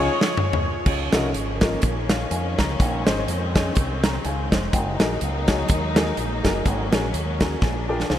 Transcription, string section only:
0.86 4.69 D#3 medium
0.86 2.77 F3 medium
0.86 2.77 A#3 medium
0.86 4.69 C#4 medium
2.81 8.19 G#3 medium
2.81 4.72 C4 medium
4.73 6.64 F#3 medium
4.73 8.19 A#3 medium
4.73 6.64 D#4 medium
6.65 7.61 F#3 medium
6.65 7.61 C#4 medium
7.61 8.19 F3 medium
7.61 8.19 D4 medium

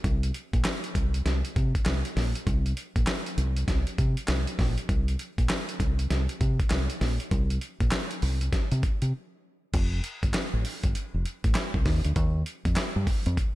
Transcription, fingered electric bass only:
0.04 0.30 C2 loud
0.53 0.63 A#1 medium
0.95 1.21 C2 medium
1.25 1.41 C2 medium
1.56 1.72 C3 loud
1.86 2.02 C2 medium
2.16 2.32 A#1 medium
2.47 2.72 C2 loud
2.96 3.06 A#1 medium
3.38 3.63 C2 medium
3.68 3.84 C2 medium
3.99 4.14 C3 loud
4.29 4.45 C2 medium
4.59 4.75 A#1 loud
4.89 5.15 C2 loud
5.38 5.48 A#1 medium
5.80 6.06 C2 medium
6.10 6.26 C2 medium
6.41 6.57 C3 loud
6.71 6.87 C2 medium
7.01 7.17 A#1 medium
7.32 7.57 C2 loud
7.81 7.90 A#1 medium
8.23 8.48 C2 medium
8.72 8.81 C3 medium
9.02 9.12 C3 medium
9.74 9.99 F1 loud
10.23 10.33 G1 medium
10.34 muted fingered electric bass stroke soft
10.54 10.63 A1 medium
10.84 10.93 G1 medium
11.14 11.24 F1 medium
11.44 11.54 A1 medium
11.74 11.84 C2 medium
11.86 12.02 D#2 loud
12.05 12.15 D2 medium
12.16 12.42 D#2 loud
12.65 12.75 F2 medium
12.77 muted fingered electric bass stroke soft
12.96 13.06 G2 loud
13.26 13.36 F2 medium

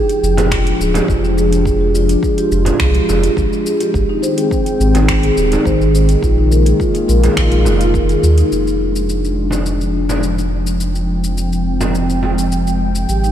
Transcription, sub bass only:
0.23 0.73 F1 medium
0.80 1.00 D1 loud
1.09 2.16 F1 medium
2.51 2.71 F1 loud
2.80 3.00 C2 loud
3.09 3.29 F1 medium
3.37 3.47 G#1 medium
3.94 4.05 G#1 loud
4.80 5.30 G#1 medium
5.37 5.57 D#1 medium
5.65 6.16 G#1 loud
6.23 6.73 A#1 medium
7.09 7.29 A#1 loud
7.37 7.67 A#1 medium
7.66 8.16 F1 medium
8.23 8.43 D#2 loud
8.51 13.06 F1 medium
13.08 13.32 G#1 medium

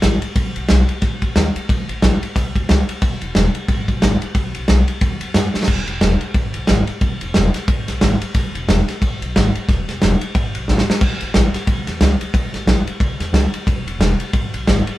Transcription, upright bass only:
0.03 0.21 A1 medium
0.23 muted upright bass stroke medium
0.35 0.54 B1 medium
0.56 0.69 B1 medium
0.70 0.88 B1 medium
1.02 1.21 D#2 medium
1.22 1.35 F#2 medium
1.36 1.54 D#2 loud
1.55 muted upright bass stroke medium
1.69 1.87 A1 medium
1.89 2.01 A1 medium
2.02 2.21 A1 loud
2.22 muted upright bass stroke medium
2.36 2.54 C#2 medium
2.56 2.68 E2 medium
2.70 2.88 C#2 medium
2.88 muted upright bass stroke medium
3.02 3.20 E1 loud
3.22 3.35 E1 medium
3.35 3.54 E1 loud
3.55 muted upright bass stroke medium
3.69 3.87 G#1 medium
3.89 4.01 B1 loud
4.02 4.21 G#1 loud
4.22 muted upright bass stroke medium
4.35 4.54 B1 loud
4.56 4.68 B1 medium
4.69 4.87 B1 medium
4.89 muted upright bass stroke medium
5.01 5.20 D#2 medium
5.21 5.34 F#2 medium
5.35 5.53 F#2 loud
5.55 muted upright bass stroke medium
5.68 5.87 E1 medium
5.87 6.00 E1 medium
6.01 6.20 E1 loud
6.21 muted upright bass stroke medium
6.34 6.53 G#1 medium
6.54 6.67 B1 medium
6.69 6.87 G#1 loud
6.89 muted upright bass stroke medium
7.02 7.20 E1 medium
7.22 7.34 E1 medium
7.36 7.54 E1 loud
7.55 muted upright bass stroke medium
7.68 7.87 G#1 loud
7.88 8.01 B1 medium
8.01 8.20 G#1 loud
8.21 muted upright bass stroke medium
8.35 8.53 E1 medium
8.55 8.67 E1 medium
8.68 8.87 E1 loud
8.88 muted upright bass stroke medium
9.02 9.20 G#1 medium
9.21 9.34 B1 loud
9.36 9.54 G#1 medium
9.56 muted upright bass stroke medium
9.69 9.87 E1 medium
9.88 10.01 E1 medium
10.02 10.20 E1 loud
10.35 10.53 G#1 medium
10.55 10.68 B1 medium
10.68 10.86 G#1 loud
10.88 muted upright bass stroke medium
11.01 11.19 A1 medium
11.22 11.34 A1 medium
11.35 11.53 A1 loud
11.55 muted upright bass stroke medium
11.67 11.86 C#2 medium
11.87 12.00 E2 loud
12.01 12.19 C#2 loud
12.21 muted upright bass stroke medium
12.34 12.52 A1 loud
12.53 12.66 A1 medium
12.67 12.85 A1 loud
12.88 muted upright bass stroke medium
13.00 13.19 C#2 medium
13.20 13.32 E2 loud
13.33 13.51 C#2 medium
13.52 muted upright bass stroke medium
13.67 13.85 E1 loud
13.86 13.98 E1 medium
13.99 14.18 E1 loud
14.20 muted upright bass stroke medium
14.34 14.52 G#1 loud
14.54 14.66 B1 medium
14.67 14.85 G#1 medium
14.87 muted upright bass stroke medium

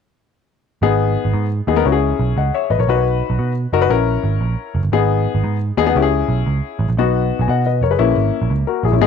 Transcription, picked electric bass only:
0.82 1.15 G#1 medium
1.25 1.32 G#1 medium
1.34 1.60 G#2 medium
1.67 1.81 D#2 medium
1.85 2.12 C#2 medium
2.19 2.33 B1 medium
2.37 2.50 C#2 medium
2.70 2.77 A1 medium
2.79 2.86 A#1 medium
2.87 3.21 B1 medium
3.30 3.37 B1 medium
3.39 3.65 B2 medium
3.73 3.86 F#1 medium
3.90 4.16 A#1 medium
4.24 4.38 G#1 medium
4.41 4.54 A#1 medium
4.75 4.82 F#1 medium
4.83 4.90 G1 medium
4.92 5.26 G#1 medium
5.35 5.42 G#1 medium
5.44 5.70 G#2 medium
5.77 5.91 D#2 medium
5.95 6.22 C#2 medium
6.28 6.42 B1 medium
6.46 6.60 C#2 medium
6.79 6.86 A1 medium
6.88 6.96 A#1 medium
6.97 7.31 B1 medium
7.39 7.46 B1 medium
7.48 7.83 B2 medium
7.81 7.95 F#1 medium
7.99 8.13 A#1 medium
8.16 8.29 G#1 medium
8.41 8.49 A#1 medium
8.50 8.63 C#2 medium
8.83 8.90 A#1 medium
8.92 8.99 A#1 medium
9.01 9.07 G#1 loud

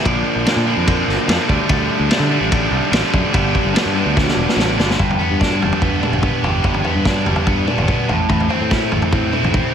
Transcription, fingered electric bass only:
0.05 0.22 A#1 loud
0.35 0.44 A#1 medium
0.56 0.73 A#2 medium
0.77 1.02 F2 medium
1.08 1.16 G1 medium
1.28 1.36 F2 loud
1.49 1.57 D2 loud
1.69 1.86 D2 loud
1.99 2.08 D2 medium
2.19 2.37 D3 medium
2.40 2.66 A1 medium
2.71 2.80 C2 medium
2.92 3.00 A1 medium
3.14 3.22 F#2 loud
3.34 3.51 G1 loud
3.65 3.73 G1 medium
3.85 4.02 G2 medium
4.06 4.31 D2 medium
4.36 4.45 E1 medium
4.56 4.75 A1 medium
4.77 4.96 G1 medium
4.99 5.16 G1 medium
5.30 5.64 G2 medium
5.62 5.70 G1 medium
5.82 5.99 G2 medium
6.12 6.29 G1 medium
6.43 6.60 G1 medium
6.64 6.81 G1 medium
6.95 7.27 G2 medium
7.26 7.35 G1 medium
7.47 7.64 G2 medium
7.78 7.95 G1 medium
8.09 8.26 A1 loud
8.30 8.47 A1 loud
8.61 8.94 A2 medium
8.92 9.00 A1 medium
9.13 9.30 A2 medium
9.43 9.60 A1 medium

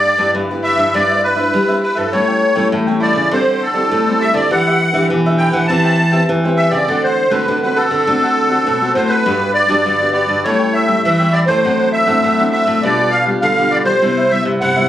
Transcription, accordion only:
0.00 0.31 D5 loud
0.64 0.95 E5 medium
0.94 1.22 D5 medium
1.24 1.79 B4 medium
1.83 1.98 B4 medium
1.96 2.12 A4 medium
2.12 2.68 C#5 medium
3.02 3.30 D5 medium
3.32 3.63 C5 medium
3.62 4.23 A4 medium
4.21 4.35 E5 loud
4.34 4.50 D5 medium
4.51 5.06 F#5 loud
5.38 5.54 G5 medium
5.52 5.67 F#5 medium
5.67 6.24 A5 medium
6.57 6.71 E5 medium
6.71 7.03 D5 medium
7.04 7.34 C5 medium
7.31 7.59 B4 medium
7.63 7.78 B4 medium
7.76 8.92 A4 medium
8.95 9.11 C5 medium
9.09 9.51 B4 medium
9.54 10.10 D5 medium
10.13 10.42 D5 medium
10.44 10.75 C#5 medium
10.74 11.02 E5 medium
11.04 11.35 E5 medium
11.33 11.40 D5 medium
11.46 11.89 C5 medium
11.92 12.49 E5 loud
12.52 12.83 E5 medium
12.83 13.14 D5 medium
13.11 13.25 F5 medium
13.41 13.73 F5 medium
13.71 13.78 D5 medium
13.85 14.32 C5 medium
14.30 14.44 E5 medium
14.61 14.89 F#5 medium

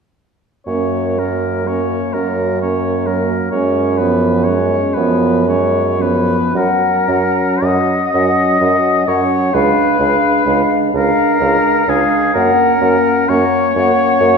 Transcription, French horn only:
0.68 1.20 A#3 soft
1.19 1.69 F#3 soft
1.68 2.17 A#3 soft
2.16 2.61 F#3 soft
2.62 3.09 A#3 soft
3.07 3.52 F#3 soft
3.53 4.02 G#3 soft
4.00 4.50 F3 soft
4.48 4.99 G#3 soft
4.98 5.47 F3 soft
5.47 6.03 G#3 soft
6.02 6.55 F3 soft
6.55 7.08 F#3 soft
7.10 7.62 F#3 soft
7.63 7.99 F#3 soft
8.14 8.61 F#3 soft
8.61 9.07 F#3 soft
9.07 9.53 F#3 soft
9.53 9.99 G#3 soft
10.00 10.45 G#3 soft
10.46 10.93 G#3 soft
10.94 11.41 G#3 soft
11.42 11.88 G#3 soft
11.88 12.34 G#3 soft
12.34 12.80 A#3 soft
12.80 13.28 A#3 soft
13.30 13.76 A#3 soft
13.77 14.21 A#3 soft
14.23 14.38 A#3 soft

